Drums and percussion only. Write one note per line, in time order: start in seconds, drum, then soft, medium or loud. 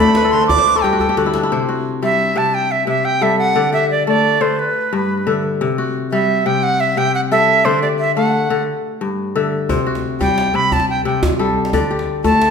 0.15 djembe slap medium
0.24 djembe slap soft
0.33 djembe slap soft
0.50 djembe tone medium
0.50 djembe bass medium
0.58 djembe slap medium
0.84 djembe bass soft
1.00 djembe bass soft
1.17 djembe slap medium
1.34 djembe slap medium
9.70 djembe tone medium
9.70 djembe bass medium
9.78 djembe slap soft
9.95 djembe slap soft
10.21 djembe tone medium
10.21 djembe bass medium
10.38 djembe slap medium
10.72 djembe tone medium
10.72 djembe bass medium
10.80 djembe slap soft
10.88 djembe slap soft
11.23 djembe slap medium
11.23 djembe tone medium
11.23 djembe bass medium
11.65 djembe slap medium
11.73 djembe tone medium
11.73 djembe bass medium
11.82 djembe slap soft
11.99 djembe slap soft
12.24 djembe tone medium
12.24 djembe bass medium
12.42 djembe slap medium